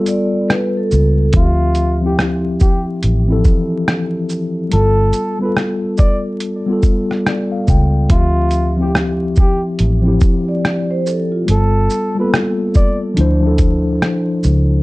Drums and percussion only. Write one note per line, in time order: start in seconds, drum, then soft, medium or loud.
0.06 closed hi-hat soft
0.06 shaker medium
0.50 cross-stick medium
0.50 closed hi-hat medium
0.91 shaker soft
1.33 kick loud
1.33 closed hi-hat medium
1.75 closed hi-hat soft
1.75 shaker soft
2.19 cross-stick loud
2.19 closed hi-hat medium
2.60 kick loud
2.60 shaker soft
3.03 closed hi-hat medium
3.44 kick medium
3.44 shaker soft
3.88 cross-stick loud
3.88 closed hi-hat medium
4.29 shaker soft
4.72 closed hi-hat medium
5.13 closed hi-hat soft
5.13 shaker soft
5.57 cross-stick loud
5.57 closed hi-hat medium
5.97 kick loud
5.97 shaker soft
6.40 closed hi-hat medium
6.83 kick medium
6.83 shaker soft
7.11 cross-stick soft
7.26 cross-stick loud
7.26 closed hi-hat medium
7.68 kick medium
7.68 shaker soft
8.10 kick loud
8.10 closed hi-hat loud
8.51 closed hi-hat soft
8.51 shaker soft
8.95 cross-stick loud
8.95 closed hi-hat medium
9.36 kick medium
9.36 shaker soft
9.79 closed hi-hat medium
10.21 kick medium
10.21 shaker soft
10.65 cross-stick loud
10.65 closed hi-hat medium
11.06 shaker soft
11.48 closed hi-hat medium
11.90 shaker soft
12.34 cross-stick loud
12.34 closed hi-hat medium
12.74 kick medium
12.74 shaker soft
13.17 closed hi-hat medium
13.58 kick medium
13.58 closed hi-hat soft
13.58 shaker soft
14.02 cross-stick medium
14.02 closed hi-hat medium
14.43 shaker soft